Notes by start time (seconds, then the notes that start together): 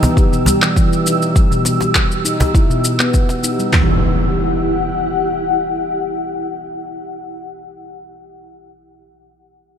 Already playing: G4 E6
0.03 B3, cajon bass, shaker
0.17 kick, shaker
0.32 B2, shaker
0.46 G3, cajon bass, shaker
0.62 E3, clap, shaker
0.76 E3, kick, shaker
0.93 shaker
1.06 D#4, shaker
1.22 shaker
1.35 G3, kick, shaker
1.51 B2, shaker
1.65 cajon slap, shaker
1.81 cajon slap, shaker
1.95 kick, clap, shaker
2.11 shaker
2.25 D#4, shaker
2.40 cajon bass, cajon slap, shaker
2.54 E4, kick, shaker
2.70 B2, shaker
2.84 shaker
3.00 B3, clap, shaker
3.14 kick, shaker
3.29 cajon slap, shaker
3.43 D#4, shaker
3.59 G3, shaker
3.72 E3 E4 G4 F#5, snare, clap, floor tom, impact